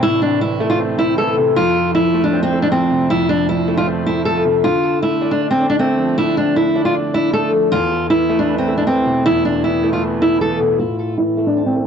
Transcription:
Already playing: A2 C3 E3 A3 C4
0.02 A2 E4
0.22 D4
0.41 E3 E4
0.60 A3
0.70 F4
0.79 C4
0.99 A3 E4
1.18 E3 A4
1.37 C3
1.56 F2 F4
1.95 F3 E4
2.14 A3
2.24 D4
2.33 C4
2.43 C4
2.53 A3
2.62 D4
2.72 F3 C4
2.91 C3
3.10 F2 E4
3.29 D4
3.48 F3 E4
3.68 A3
3.77 F4
3.87 C4
4.06 A3 E4
4.25 F3 A4
4.45 C3
4.64 D3 F4
5.02 A3 E4
5.22 D4
5.31 D4
5.41 D5
5.51 C4
5.60 D4
5.70 D4
5.79 A3 C4
5.99 F3
6.18 D3 E4
6.37 D4
6.56 A3 E4
6.76 D4
6.85 F4
6.95 D5
7.14 D4 E4
7.33 A3 A4
7.52 F3
7.72 E2 F4
8.10 E3 E4
8.29 A3
8.39 D4
8.48 B4
8.58 C4
8.68 A3
8.77 D4
8.87 E3 C4
9.06 B2
9.25 E2 E4
9.45 D4
9.64 E3 E4
9.83 A3
9.93 F4
10.02 B3
10.22 A3 E4
10.41 E3 A4
10.60 B2
10.79 A2 F4
11.18 E3 E4
11.37 A3
11.47 D4
11.57 C4
11.66 C4
11.76 A3

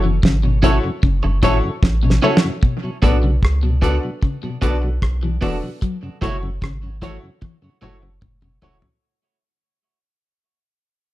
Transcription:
Already playing: F#1
0.04 F#2 C#3 E3
0.23 G#1 C#3, kick, snare
0.43 F#2 B2 C#3
0.62 B2 F#3 A3 C#4 E4 F#4 A4 C#5, kick, closed hi-hat
0.83 F#2 C#3, muted clean electric guitar stroke
1.03 F#1 C#3, kick
1.23 F#1 F#2 C#3, muted clean electric guitar stroke
1.42 G#1 A2 F#3 A3 C#4 E4 F#4 A4 C#5, kick, closed hi-hat
1.63 F#2 C#3 A4 C#5
1.83 A1, kick, snare
2.03 F#2 B2 C#3
2.10 snare
2.22 C#3 F#3 A3 C#4 E4 F#4 A4 C#5
2.37 snare
2.44 F#2 C#3
2.63 B2, kick
2.83 B2 F#3
3.02 B1 A2 A3 B3 D4 F#4 A4 B4 D5, kick, cross-stick, closed hi-hat
3.23 B2 C#3 F#3
3.43 C#2, kick, cross-stick
3.63 B2 F#3
3.82 C#3 A3 B3 D4 F#4 A4 B4 D5, kick, closed hi-hat
4.03 B2 F#3
4.22 C#3, kick
4.43 B2 F#3
4.62 B1 D3 A3 B3 D4 F#4 A4 B4 D5, kick, closed hi-hat
4.82 B2 F#3 A4 B4, muted clean electric guitar stroke
5.02 B1, kick, cross-stick
5.23 B2 E3 F#3
5.41 E1 E3 A3 B3 D4 F#4 A4 B4 D5, kick, open hi-hat
5.63 B2 F#3
5.82 F#3, kick, hi-hat pedal
6.03 F#2 C#3
6.21 F#1 B2 F#3 A3 E4 F#4 A4 C#5, kick, cross-stick, closed hi-hat
6.43 F#2 C#3
6.62 G#1 C#3, kick, cross-stick
6.83 F#2 C#3
7.02 E3 F#3 A3 E4 F#4 A4 C#5, kick, closed hi-hat
7.23 F#2 C#3
7.42 E3, kick, high tom
7.62 F#2 C#3
7.81 F#1 C#3 F#3 A3 E4 F#4 A4 C#5, mid tom
8.02 F#2 C#3 A4 C#5, muted clean electric guitar stroke
8.22 F#1 A2, kick, mid tom
8.42 F#2 B2 C#3, mid tom
8.62 E1 C#3 F#3 A3 E4 F#4 A4 C#5, floor tom
8.82 F#2 C#3, floor tom

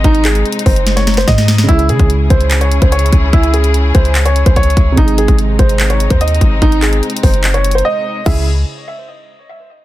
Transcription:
Already playing: C3 G#3 C4 D#4 G#4
0.04 G#1 D#4, kick, closed hi-hat
0.15 closed hi-hat
0.25 G#4, clap, closed hi-hat
0.35 closed hi-hat
0.46 closed hi-hat
0.52 closed hi-hat
0.59 closed hi-hat
0.66 F#1 C5, kick, open hi-hat
0.76 closed hi-hat
0.87 snare, closed hi-hat
0.96 C#5, snare, closed hi-hat
1.07 snare, closed hi-hat
1.14 C5, snare, closed hi-hat
1.21 closed hi-hat
1.28 G#2 D#5, kick, snare, closed hi-hat
1.38 snare
1.48 snare, closed hi-hat
1.58 snare
1.63 C#3 G#3
1.68 C#2 C#3 C#4 E4 G#4, kick, closed hi-hat
1.74 G#4
1.79 closed hi-hat
1.89 C#3 G#4, closed hi-hat
1.99 C#2, kick, closed hi-hat
2.10 closed hi-hat
2.30 C#2 C5, kick, closed hi-hat
2.41 closed hi-hat
2.51 clap, closed hi-hat
2.61 C#5, closed hi-hat
2.72 closed hi-hat
2.82 C#2 C5, kick, closed hi-hat
2.92 C#5, closed hi-hat
2.99 closed hi-hat
3.06 closed hi-hat
3.12 C#2, kick, closed hi-hat
3.33 C#2 E4, kick, closed hi-hat
3.43 closed hi-hat
3.54 G#4, closed hi-hat
3.64 closed hi-hat
3.74 closed hi-hat
3.95 C#2 C5, kick, closed hi-hat
4.05 closed hi-hat
4.15 clap, closed hi-hat
4.26 C#5, closed hi-hat
4.36 closed hi-hat
4.46 C#2 C5, kick, closed hi-hat
4.56 C#5, kick, closed hi-hat
4.63 closed hi-hat
4.70 closed hi-hat
4.77 C#2, kick, closed hi-hat
4.92 C3 G#3
4.97 G#1 G#3 C4 D#4, kick, closed hi-hat
5.03 G#4
5.08 closed hi-hat
5.18 G#4, closed hi-hat
5.28 G#1, kick, closed hi-hat
5.39 closed hi-hat
5.59 G#1 C5, kick, closed hi-hat
5.69 closed hi-hat
5.80 clap, closed hi-hat
5.90 C#5, closed hi-hat
6.00 closed hi-hat
6.10 D#2 C5, kick, closed hi-hat
6.21 D#5, closed hi-hat
6.28 closed hi-hat
6.35 closed hi-hat
6.41 G#1, kick, closed hi-hat
6.62 G#1 D#4, kick, closed hi-hat
6.72 closed hi-hat
6.82 G#4, clap, closed hi-hat
6.93 closed hi-hat
7.03 closed hi-hat
7.10 closed hi-hat
7.17 closed hi-hat
7.23 F#1 C5, kick, open hi-hat
7.34 closed hi-hat
7.44 clap, closed hi-hat
7.54 C#5, closed hi-hat
7.64 closed hi-hat
7.71 C5, closed hi-hat
7.78 closed hi-hat
7.85 D#5
8.26 C#2 C#3 G#3 C#4 E4 G#4 E5, kick, crash

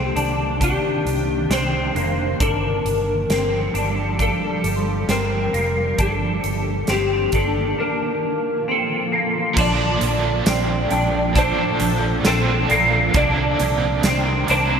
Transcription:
Already playing: C2 C3 D#3 A#3 C4 D4 A4 C5
0.05 G4
0.16 C2 D4 D5, closed hi-hat
0.61 D4 G4, kick, closed hi-hat
1.05 C2, closed hi-hat
1.50 C2 C4 C5, snare, closed hi-hat
1.95 F1 A#3, closed hi-hat
2.39 G1 F3 G3 D4 G4 A#4, kick, closed hi-hat
2.85 G1, closed hi-hat
3.30 G1 C4, snare, closed hi-hat
3.60 A4
3.74 G1 D4, closed hi-hat
4.19 D4 A4 F5, kick, closed hi-hat
4.48 A5
4.64 G1, closed hi-hat
4.76 C6
5.08 G1 C4 A#4, snare, closed hi-hat
5.53 F1 A#3, closed hi-hat
5.97 G1 D#3 A#3 D4 G4 A4, kick, closed hi-hat
6.44 G1, closed hi-hat
6.87 G1 C4, snare, closed hi-hat
6.91 G4
7.32 G1 D4 A4, kick, closed hi-hat
7.77 D3 F3 D4 F4 A#4
8.68 C4 A4
9.12 A#3 A5
9.41 C6
9.54 A#1 A#2 F3 D4 A4 C6, kick, crash
9.60 A3 D4 D5
10.01 A#1, closed hi-hat
10.46 A#1 C4, snare, closed hi-hat, tambourine
10.89 A#1 D4 G5, closed hi-hat
11.33 A#2 F3 A3 D4, kick, closed hi-hat
11.38 D4 C5
11.80 A#1, closed hi-hat
12.23 A#1 A#2 F3 C4, snare, closed hi-hat, tambourine
12.27 A3 D4 A4
12.68 A#1 A#3 D5, closed hi-hat
13.14 C2 C3 D#3 A#3 C4 D4 A#4 D5, kick, closed hi-hat
13.60 C2, closed hi-hat
14.03 C2 C4, snare, closed hi-hat, tambourine
14.47 C2 A#3 D4, closed hi-hat
14.51 D#3 C5

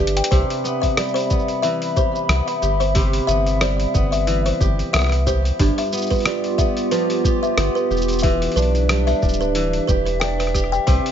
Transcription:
Already playing: E3 G3 D4 G4 E5
0.00 G1 G4
0.07 closed hi-hat
0.17 G5, closed hi-hat
0.24 closed hi-hat
0.31 C2 C3 G4 C5 E5 B5, kick, open hi-hat, shaker
0.50 open hi-hat, shaker
0.64 B3, shaker
0.82 E5, kick, open hi-hat, shaker
0.97 G3, cross-stick, open hi-hat, shaker
1.08 shaker
1.14 C5, open hi-hat, shaker
1.19 shaker
1.23 shaker
1.30 B3, kick, shaker
1.39 shaker
1.48 open hi-hat, shaker
1.62 E3 E5, open hi-hat, shaker
1.82 open hi-hat, shaker
1.96 G4 C5, kick, shaker
2.15 shaker
2.29 C2 B3, cross-stick, open hi-hat, shaker
2.47 E5, open hi-hat, shaker
2.62 G1 G4, shaker
2.80 C5, open hi-hat, shaker
2.95 C3 G4, kick, open hi-hat, shaker
3.13 open hi-hat, shaker
3.27 G1 B3 E5, shaker
3.46 open hi-hat, shaker
3.61 G3 C5, cross-stick, open hi-hat, shaker
3.80 open hi-hat, shaker
3.94 G1 B3, kick, shaker
4.12 E5, open hi-hat, shaker
4.27 E3, open hi-hat, shaker
4.46 C5, open hi-hat, shaker
4.60 G1 G4, kick, shaker
4.79 open hi-hat, shaker
4.93 C2 B3 E5, cross-stick, open hi-hat, shaker
4.96 cross-stick
4.99 cross-stick
5.02 cross-stick
5.04 cross-stick
5.07 cross-stick
5.10 cross-stick
5.12 cross-stick, open hi-hat, shaker
5.27 G4 C5, kick, shaker
5.45 open hi-hat, shaker
5.59 G1 G2 B3 F4 G4, kick, open hi-hat, shaker
5.78 E5, open hi-hat, shaker
5.81 shaker
5.82 shaker
5.84 shaker
5.87 shaker
5.89 shaker
5.91 B3, shaker
5.93 shaker
5.97 shaker
6.02 shaker
6.10 B4, kick, open hi-hat, shaker
6.15 shaker
6.18 open hi-hat, shaker
6.22 G3, cross-stick, open hi-hat, shaker
6.26 shaker
6.44 open hi-hat, shaker
6.58 B3 E5, kick, shaker
6.77 open hi-hat, shaker
6.91 F3 B4, open hi-hat, shaker
7.10 open hi-hat, shaker
7.25 G4, kick, shaker
7.43 E5, shaker
7.57 G1 B3, cross-stick, open hi-hat, shaker
7.75 B4, shaker
7.90 E1 G4, shaker
7.97 shaker
8.01 shaker
8.08 open hi-hat, shaker
8.12 shaker
8.19 E5, shaker
8.23 E3 D4 G4 E5, kick, open hi-hat
8.42 open hi-hat, shaker
8.52 open hi-hat
8.56 B1 D4 B4, shaker
8.62 open hi-hat
8.75 open hi-hat, shaker
8.89 G3, cross-stick, open hi-hat, shaker
9.07 E5, open hi-hat, shaker
9.22 D1 D4, kick, shaker
9.29 shaker
9.33 shaker
9.41 B4, shaker
9.55 E3, open hi-hat, shaker
9.73 open hi-hat
9.88 E1 G4 B4, kick, shaker
10.06 B4, open hi-hat, shaker
10.20 D4 G5, cross-stick, open hi-hat, shaker
10.39 B4, cross-stick, open hi-hat, shaker
10.47 cross-stick
10.54 G4, kick, cross-stick, shaker
10.64 cross-stick
10.72 G5, shaker
10.87 C2 C3 G4 C5 B5, kick, open hi-hat, shaker
11.06 open hi-hat, shaker

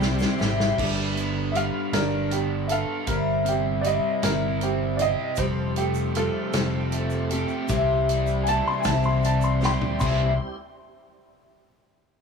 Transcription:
Already playing: C2 C3 G3 C4 E4 G4 C5
0.01 C4, snare, shaker
0.19 C4 E4 C5, snare, shaker
0.24 G3
0.38 G#1 G3 C4 G4, snare, shaker
0.43 E4 C5
0.60 snare
0.78 G1 G3 D4 A4 B4, kick, crash
1.16 B3, closed hi-hat
1.52 G3 E5, closed hi-hat
1.56 D4 A4 B4 F5
1.93 G1 G3 D4 A#4, snare, closed hi-hat
2.31 B3 G4, closed hi-hat
2.67 B4 E5, closed hi-hat
2.71 D4 A4 F5
3.07 G1 G3 C4 E4 A#4 C5, kick, closed hi-hat
3.45 C4 G4, closed hi-hat
3.81 G3 C4 D5, closed hi-hat
3.85 E4 C5 D#5
4.22 G1 G3 C4 E4 A#4 C5, snare, closed hi-hat
4.61 C4 G4, closed hi-hat
4.97 E4 G4 C5 D5, closed hi-hat
5.02 C4 D#5
5.36 F1 F3 G3 A3 C4 F4 G4 A4 C5, kick, closed hi-hat, shaker
5.76 A3 G4, closed hi-hat
5.95 shaker
6.15 F3 G3 C4 F4 G4 A4, closed hi-hat
6.53 F1 F3 G3 C4 G4 A4, snare, closed hi-hat, shaker
6.92 A3, closed hi-hat, shaker
7.10 shaker
7.30 C4 G4 A4, closed hi-hat
7.48 shaker
7.68 C2 C3 E3 G3 C4 E4 G4 C5, kick, closed hi-hat, shaker
8.09 G3, closed hi-hat
8.27 shaker
8.44 E3 G3 C4 G#5, closed hi-hat
8.48 E4 C5 A5
8.68 C6
8.80 G#5, shaker
8.85 C2 C3 E3 G3 C4 E4 C5 A5, kick, snare, closed hi-hat
9.03 C6, shaker
9.23 G3 A5, closed hi-hat, shaker
9.41 C6, shaker
9.61 G3 C4 E4 G4 C5, snare, shaker
9.65 G5 C6
9.81 floor tom
10.00 C2 C3 E3 G3 C4 E4 C5 C6, kick, crash, shaker
10.04 G3 C4 E4 G4

